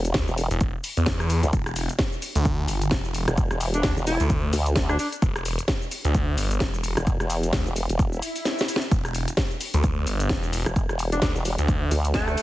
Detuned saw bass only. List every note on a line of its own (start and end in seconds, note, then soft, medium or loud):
0.15 0.26 D2 loud
0.51 0.72 E1 loud
0.97 1.41 E2 loud
1.53 1.87 E1 loud
2.35 2.67 D2 loud
2.68 2.90 G1 medium
2.92 3.26 E1 loud
3.84 3.95 D2 loud
4.20 4.51 D2 loud
5.22 5.56 E1 loud
6.05 6.36 D2 loud
6.38 6.59 G1 loud
7.53 7.64 D2 loud
8.91 9.26 E1 loud
9.74 10.05 D2 medium
10.07 10.28 G1 loud
11.22 11.33 D2 loud
11.59 11.90 D2 loud